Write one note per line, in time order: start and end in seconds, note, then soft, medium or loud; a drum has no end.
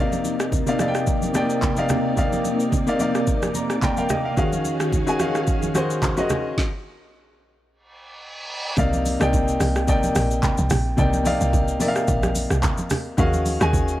0.00 0.52 C3 medium
0.00 4.34 C3 medium
0.00 0.52 A#3 medium
0.00 4.33 A#3 medium
0.00 0.52 D#4 medium
0.00 4.34 D#4 medium
0.00 0.53 D5 medium
0.00 4.34 D5 medium
0.00 0.53 F5 medium
0.12 high conga medium
0.12 shaker medium
0.25 high conga medium
0.25 shaker medium
0.40 cross-stick loud
0.40 shaker medium
0.52 kick medium
0.52 low conga medium
0.52 shaker medium
0.66 0.77 C3 medium
0.66 0.77 A#3 medium
0.66 0.77 D#4 medium
0.66 0.78 D5 medium
0.66 0.78 F5 medium
0.66 shaker medium
0.79 1.24 C3 medium
0.79 1.25 A#3 medium
0.79 1.25 D#4 medium
0.79 1.25 D5 medium
0.79 0.88 F5 medium
0.79 cross-stick medium
0.79 high conga medium
0.79 shaker medium
0.88 1.29 G5 medium
0.95 cross-stick medium
0.95 shaker soft
1.07 kick loud
1.07 shaker medium
1.22 high conga medium
1.22 shaker medium
1.34 1.68 C3 medium
1.34 1.68 A#3 medium
1.34 1.68 D#4 medium
1.34 1.69 D5 medium
1.34 1.69 G5 loud
1.34 cross-stick medium
1.34 high conga medium
1.34 shaker loud
1.50 shaker medium
1.62 kick loud
1.62 clap medium
1.62 low conga medium
1.62 shaker medium
1.77 2.09 C3 medium
1.77 2.10 A#3 medium
1.77 2.10 D#4 medium
1.77 2.10 D5 medium
1.77 2.11 F5 medium
1.77 high conga medium
1.77 shaker medium
1.89 cross-stick loud
1.89 low conga medium
1.89 shaker medium
2.16 2.72 C3 medium
2.16 2.72 A#3 medium
2.16 2.72 D#4 medium
2.16 2.73 D5 medium
2.16 2.73 F5 medium
2.16 kick loud
2.16 low conga medium
2.16 shaker medium
2.33 high conga medium
2.33 shaker medium
2.45 high conga medium
2.45 shaker medium
2.60 shaker medium
2.72 kick medium
2.72 low conga medium
2.72 shaker medium
2.87 2.97 C3 medium
2.87 2.97 A#3 medium
2.87 2.98 D#4 medium
2.87 2.98 D5 medium
2.87 2.98 F5 medium
2.87 shaker medium
2.99 3.45 C3 medium
2.99 3.45 A#3 medium
2.99 3.45 D#4 medium
2.99 3.45 D5 medium
2.99 3.46 F5 medium
2.99 high conga medium
2.99 shaker medium
3.15 cross-stick medium
3.15 shaker soft
3.27 kick loud
3.27 shaker medium
3.42 cross-stick medium
3.42 high conga medium
3.42 shaker medium
3.55 3.81 A#5 medium
3.55 high conga medium
3.55 shaker loud
3.70 cross-stick medium
3.70 shaker medium
3.82 3.97 D5 medium
3.82 3.96 G5 medium
3.82 3.97 A#5 medium
3.82 kick loud
3.82 clap medium
3.82 low conga medium
3.82 shaker medium
3.97 4.24 A#4 medium
3.97 4.09 F5 medium
3.97 4.24 G5 medium
3.97 high conga medium
3.97 shaker medium
4.09 4.36 D#5 medium
4.09 cross-stick loud
4.09 low conga medium
4.09 shaker medium
4.25 4.37 F5 medium
4.36 4.92 D#3 medium
4.36 6.56 D#3 medium
4.36 4.92 C#4 medium
4.36 6.56 C#4 medium
4.36 4.93 F#4 medium
4.36 6.56 F#4 medium
4.36 6.56 G#4 medium
4.36 4.93 G#4 medium
4.36 6.56 F5 medium
4.36 4.93 F5 medium
4.36 kick loud
4.36 low conga medium
4.36 shaker medium
4.53 high conga medium
4.53 shaker medium
4.65 high conga medium
4.65 shaker medium
4.80 cross-stick loud
4.80 shaker medium
4.92 kick medium
4.92 low conga medium
4.92 shaker medium
5.06 5.17 D#3 medium
5.06 5.17 C#4 medium
5.06 5.17 F#4 medium
5.06 5.18 G#4 medium
5.06 5.18 G#5 medium
5.06 shaker medium
5.19 5.65 D#3 medium
5.19 5.65 C#4 medium
5.19 5.65 F#4 medium
5.19 5.65 G#4 medium
5.19 5.66 F5 medium
5.19 cross-stick medium
5.19 high conga medium
5.19 shaker medium
5.35 cross-stick medium
5.35 shaker soft
5.47 kick loud
5.47 shaker medium
5.63 high conga medium
5.63 shaker medium
5.74 6.08 D#3 medium
5.74 6.08 C#4 medium
5.74 6.09 F#4 medium
5.74 6.09 G#4 medium
5.74 6.09 C5 loud
5.74 cross-stick medium
5.74 high conga medium
5.74 shaker loud
5.90 shaker medium
6.02 kick loud
6.02 clap medium
6.02 low conga medium
6.02 shaker medium
6.17 6.50 D#3 medium
6.17 6.50 C#4 medium
6.17 6.50 F#4 medium
6.17 6.51 G#4 medium
6.17 6.51 D#5 medium
6.17 high conga medium
6.17 shaker medium
6.30 cross-stick loud
6.30 low conga medium
6.30 shaker medium
6.58 kick loud
6.58 snare medium
7.68 reverse cymbal medium
8.77 9.17 C2 loud
8.77 9.11 C3 medium
8.77 9.11 A#3 medium
8.77 9.11 D#4 medium
8.77 9.12 D5 medium
8.77 9.12 F5 medium
8.77 kick loud
8.77 low conga medium
8.77 shaker medium
8.93 high conga medium
8.93 shaker medium
9.06 open hi-hat soft
9.06 high conga medium
9.06 shaker medium
9.20 9.57 C2 loud
9.20 9.75 C3 medium
9.20 9.75 A#3 medium
9.20 9.76 D#4 medium
9.20 9.76 D5 medium
9.20 9.76 G5 loud
9.20 cross-stick loud
9.20 shaker medium
9.33 kick medium
9.33 low conga medium
9.33 shaker medium
9.48 shaker medium
9.60 10.12 C2 loud
9.60 cross-stick medium
9.60 open hi-hat soft
9.60 high conga medium
9.60 shaker medium
9.76 cross-stick medium
9.76 shaker soft
9.87 10.76 C3 medium
9.87 10.76 A#3 medium
9.87 10.77 D#4 medium
9.87 10.77 D5 medium
9.87 10.77 G5 loud
9.87 kick loud
9.87 shaker medium
10.03 high conga medium
10.03 shaker medium
10.15 10.41 A#1 loud
10.15 cross-stick loud
10.15 open hi-hat medium
10.15 high conga medium
10.15 shaker loud
10.31 shaker medium
10.43 kick loud
10.43 clap medium
10.43 low conga medium
10.43 shaker medium
10.58 10.70 C2 medium
10.58 high conga medium
10.58 shaker medium
10.70 10.96 A#1 loud
10.70 cross-stick loud
10.70 open hi-hat medium
10.70 low conga medium
10.70 shaker medium
10.97 11.38 C2 loud
10.97 11.20 C3 medium
10.97 11.20 A#3 medium
10.97 11.21 D#4 medium
10.97 11.21 D5 medium
10.97 11.21 G5 medium
10.97 kick loud
10.97 low conga medium
10.97 shaker medium
11.13 high conga medium
11.13 shaker medium
11.25 11.70 C3 medium
11.25 11.71 A#3 medium
11.25 11.71 D#4 medium
11.25 11.71 D5 medium
11.25 11.71 F5 loud
11.25 open hi-hat soft
11.25 high conga medium
11.25 shaker medium
11.41 11.78 C2 loud
11.41 shaker medium
11.53 kick medium
11.53 low conga medium
11.53 shaker medium
11.68 shaker medium
11.79 12.69 C3 medium
11.79 12.69 A#3 medium
11.79 12.69 D#4 medium
11.79 12.70 D5 medium
11.79 11.88 E5 medium
11.79 open hi-hat medium
11.79 high conga medium
11.79 shaker medium
11.88 12.73 F5 loud
11.96 cross-stick medium
11.96 shaker soft
12.08 12.48 A#1 loud
12.08 kick loud
12.08 shaker medium
12.23 cross-stick medium
12.23 high conga medium
12.23 shaker medium
12.35 open hi-hat medium
12.35 high conga medium
12.35 shaker loud
12.50 12.62 C2 medium
12.50 cross-stick medium
12.50 shaker medium
12.63 kick loud
12.63 clap medium
12.63 low conga medium
12.63 shaker medium
12.78 high conga medium
12.78 shaker medium
12.90 cross-stick loud
12.90 open hi-hat medium
12.90 low conga medium
12.90 shaker medium
13.17 13.58 D#2 loud
13.17 13.51 D#3 medium
13.17 13.52 C#4 medium
13.17 13.52 F#4 medium
13.17 13.52 G#4 medium
13.17 13.52 F5 medium
13.17 kick loud
13.17 low conga medium
13.17 shaker medium
13.33 high conga medium
13.33 shaker medium
13.46 open hi-hat soft
13.46 high conga medium
13.46 shaker medium
13.60 13.98 D#2 medium
13.60 14.00 D#3 medium
13.60 14.00 C#4 medium
13.60 14.00 F#4 medium
13.60 14.00 G#4 medium
13.60 14.00 G#5 loud
13.60 cross-stick loud
13.60 shaker medium
13.73 kick medium
13.73 low conga medium
13.73 shaker medium
13.88 shaker medium